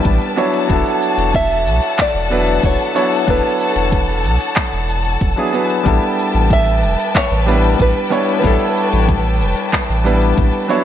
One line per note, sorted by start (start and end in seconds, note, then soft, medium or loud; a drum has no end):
0.00 0.39 G3 medium
0.00 0.36 B3 medium
0.00 0.37 D4 medium
0.00 0.38 E4 medium
0.00 0.40 A4 medium
0.00 0.34 B4 medium
0.00 0.34 G5 medium
0.00 10.66 A5 medium
0.05 0.19 A1 loud
0.05 kick loud
0.05 closed hi-hat medium
0.05 shaker soft
0.22 closed hi-hat soft
0.22 shaker soft
0.36 0.61 F#3 medium
0.36 0.62 B3 medium
0.36 0.62 D4 medium
0.36 0.62 E4 medium
0.36 5.82 A4 medium
0.36 0.63 C#5 medium
0.36 5.82 F#5 medium
0.36 shaker medium
0.53 closed hi-hat soft
0.53 shaker soft
0.67 0.83 E1 loud
0.67 2.27 F#3 medium
0.67 2.27 B3 medium
0.67 2.28 D4 medium
0.67 2.29 E4 medium
0.67 kick loud
0.67 closed hi-hat medium
0.67 shaker soft
0.72 2.29 A4 medium
0.86 closed hi-hat soft
0.86 shaker soft
1.02 shaker medium
1.18 1.68 E1 medium
1.18 closed hi-hat soft
1.18 shaker soft
1.34 2.01 E5 loud
1.34 kick loud
1.34 closed hi-hat medium
1.34 shaker soft
1.51 shaker soft
1.66 1.80 B1 medium
1.66 shaker medium
1.83 closed hi-hat soft
1.83 shaker soft
1.99 2.65 D5 loud
1.99 kick loud
1.99 clap medium
1.99 closed hi-hat medium
1.99 shaker soft
2.15 2.59 E1 medium
2.15 shaker soft
2.30 2.91 F#3 medium
2.30 2.91 B3 medium
2.30 2.92 D4 medium
2.30 2.92 E4 medium
2.30 2.92 B4 medium
2.30 shaker medium
2.47 closed hi-hat soft
2.47 shaker soft
2.63 2.77 E1 loud
2.63 3.31 C#5 medium
2.63 kick loud
2.63 closed hi-hat medium
2.63 shaker soft
2.80 closed hi-hat soft
2.80 shaker soft
2.94 3.19 F#3 medium
2.94 3.20 B3 medium
2.94 3.20 D4 medium
2.94 3.20 E4 medium
2.94 3.20 C#5 medium
2.94 shaker medium
3.12 closed hi-hat soft
3.12 shaker soft
3.26 3.42 E1 medium
3.26 4.85 F#3 medium
3.26 4.85 B3 medium
3.26 4.86 D4 medium
3.26 4.86 E4 medium
3.26 kick loud
3.26 closed hi-hat soft
3.26 shaker soft
3.30 4.87 A4 medium
3.30 5.19 B4 medium
3.44 closed hi-hat soft
3.44 shaker soft
3.60 shaker medium
3.76 4.26 E1 medium
3.76 closed hi-hat soft
3.76 shaker soft
3.92 kick loud
3.92 closed hi-hat medium
3.92 shaker soft
4.09 shaker soft
4.24 4.38 B1 medium
4.24 shaker medium
4.40 closed hi-hat soft
4.40 shaker soft
4.56 kick loud
4.56 clap medium
4.56 closed hi-hat medium
4.56 shaker soft
4.73 5.17 E1 loud
4.73 shaker soft
4.89 shaker medium
5.05 closed hi-hat soft
5.05 shaker soft
5.21 5.35 E1 loud
5.21 kick loud
5.21 closed hi-hat soft
5.21 shaker soft
5.36 5.49 F#3 medium
5.36 5.49 B3 medium
5.36 5.50 D4 medium
5.36 5.50 E4 medium
5.36 5.50 G#4 medium
5.36 closed hi-hat soft
5.36 shaker soft
5.52 5.81 F#3 medium
5.52 5.82 B3 medium
5.52 5.82 D4 medium
5.52 5.83 E4 medium
5.52 5.83 B4 medium
5.52 shaker medium
5.70 closed hi-hat soft
5.70 shaker soft
5.83 5.99 A1 medium
5.83 7.43 G3 medium
5.83 7.44 B3 medium
5.83 7.44 D4 medium
5.83 7.45 E4 medium
5.83 10.66 B4 medium
5.83 10.66 G5 medium
5.83 kick loud
5.83 closed hi-hat medium
5.83 shaker soft
5.88 7.45 A4 medium
6.02 closed hi-hat soft
6.02 shaker soft
6.19 shaker medium
6.34 6.84 A1 medium
6.34 closed hi-hat soft
6.34 shaker soft
6.50 7.17 E5 loud
6.50 kick loud
6.50 closed hi-hat medium
6.50 shaker soft
6.67 shaker soft
6.83 6.96 E1 medium
6.83 shaker medium
7.00 closed hi-hat soft
7.00 shaker soft
7.15 7.77 C#5 loud
7.15 kick loud
7.15 clap medium
7.15 closed hi-hat medium
7.15 shaker soft
7.31 7.76 A1 medium
7.31 shaker soft
7.46 8.07 G3 medium
7.46 8.08 B3 medium
7.46 8.08 D4 medium
7.46 8.08 E4 medium
7.46 8.08 B4 medium
7.46 shaker medium
7.64 closed hi-hat soft
7.64 shaker soft
7.80 7.93 A1 loud
7.80 8.38 B4 loud
7.80 kick loud
7.80 closed hi-hat soft
7.80 shaker soft
7.96 closed hi-hat soft
7.96 shaker soft
8.10 8.35 G3 medium
8.10 8.36 B3 medium
8.10 8.36 D4 medium
8.10 8.36 E4 medium
8.10 8.37 C#5 loud
8.10 shaker medium
8.29 closed hi-hat soft
8.29 shaker soft
8.39 10.01 G3 medium
8.39 10.01 B3 medium
8.39 8.45 B4 medium
8.43 8.58 A1 medium
8.43 10.02 D4 medium
8.43 10.02 E4 medium
8.43 10.03 A4 medium
8.43 10.35 A4 medium
8.43 kick loud
8.43 closed hi-hat medium
8.43 shaker soft
8.61 closed hi-hat soft
8.61 shaker soft
8.77 shaker medium
8.93 9.43 A1 medium
8.93 closed hi-hat soft
8.93 shaker soft
9.09 kick loud
9.09 closed hi-hat medium
9.09 shaker soft
9.25 shaker soft
9.41 9.55 E1 medium
9.41 shaker medium
9.57 closed hi-hat soft
9.57 shaker soft
9.73 kick loud
9.73 clap medium
9.73 closed hi-hat medium
9.73 shaker soft
9.90 10.34 A1 medium
9.90 shaker soft
10.04 10.65 G3 medium
10.04 10.66 B3 medium
10.04 10.66 D4 medium
10.04 10.66 E4 medium
10.04 10.66 B4 medium
10.04 shaker medium
10.22 closed hi-hat soft
10.22 shaker soft
10.37 10.51 A1 loud
10.37 kick loud
10.37 closed hi-hat soft
10.37 shaker soft
10.53 closed hi-hat soft
10.53 shaker soft
10.68 10.84 F#3 medium
10.68 10.84 B3 medium
10.68 10.84 D4 medium
10.68 10.84 E4 medium
10.68 10.84 A4 medium
10.68 10.84 C#5 loud
10.68 10.84 F#5 medium
10.68 10.84 A5 medium
10.68 shaker medium